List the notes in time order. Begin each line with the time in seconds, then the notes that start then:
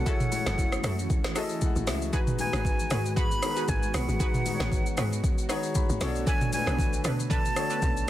Already playing: F#4 F#5
0.06 E3 A3 C#4 E4 F#4 G#4 A4 C#5, kick, low conga, shaker
0.20 mid tom, shaker
0.32 E4 G#4 A4 C#5, open hi-hat, high conga, shaker
0.46 F#1 E4 F#4 A4, cross-stick, snare, shaker
0.58 kick, low conga, shaker
0.72 cross-stick, high conga, shaker
0.84 F#2 E4 F#4 A4, cross-stick, open hi-hat, high conga, low conga, shaker
0.99 shaker
1.10 kick, low conga, shaker
1.24 cross-stick, snare, shaker
1.35 E4 F#4 G#4 A4 D#5 A5, cross-stick, open hi-hat, shaker
1.49 shaker
1.61 F#5, kick, high conga, shaker
1.76 A1, shaker
1.87 C#2 E5, cross-stick, snare, open hi-hat, high conga, shaker
2.02 shaker
2.13 D#3 G#3 B3 D#4 F#4 G#4 B4 G#5, kick, low conga, shaker
2.27 mid tom, shaker
2.39 D#4 F#4 G#4 B4 G#5, open hi-hat, high conga, shaker
2.53 G#1 F#4 G#4 B4, cross-stick, shaker
2.65 kick, low conga, shaker
2.79 shaker
2.90 G#2 F#4 G#4 B4, cross-stick, open hi-hat, high conga, low conga, shaker
3.06 shaker
3.16 F#4 G#4 B4 B5, kick, low conga, shaker
3.31 shaker
3.42 D#4 F#4 G#4 A#4, cross-stick, open hi-hat, shaker
3.51 B4
3.56 F#4 G#4 B4, shaker
3.68 G#1 G#5, kick, high conga, shaker
3.83 shaker
3.94 B1 F#4 G#4 B4 F#5, cross-stick, open hi-hat, high conga, shaker
4.08 G#1, shaker
4.19 D#4 F#4 G#4 B4, kick, low conga, shaker
4.34 mid tom, shaker
4.45 D#4 F#4 G#4 B4, open hi-hat, high conga, shaker
4.54 C#5
4.60 G#1 F#4 G#4 B4, cross-stick, snare, shaker
4.72 kick, low conga, shaker
4.86 shaker
4.97 G#2 F#4 G#4 B4, cross-stick, open hi-hat, high conga, low conga, shaker
5.13 shaker
5.24 kick, low conga, shaker
5.38 shaker
5.49 D#4 F#4 G#4 B4 C#5, cross-stick, open hi-hat, shaker
5.63 shaker
5.75 B5, kick, high conga, shaker
5.89 G#1, shaker
6.00 B1 D3 A3 C#4 F#4 A4 C#5, cross-stick, snare, open hi-hat, high conga, shaker
6.07 D4
6.15 shaker
6.26 D4 A4 B4 G#5, kick, low conga, shaker
6.41 mid tom, shaker
6.52 D4 F#4 A4 B4 G#5, open hi-hat, high conga, shaker
6.66 B1 D4 A4 B4, cross-stick, shaker
6.78 kick, low conga, shaker
6.93 shaker
7.04 B2 D4 A4 B4, cross-stick, open hi-hat, high conga, low conga, shaker
7.20 shaker
7.30 D4 A4 B4 A5, kick, low conga, shaker
7.45 shaker
7.56 D4 F#4 A4 C#5, cross-stick, open hi-hat, shaker
7.70 D4 A4 B4, shaker
7.82 B1, kick, high conga, shaker
7.97 shaker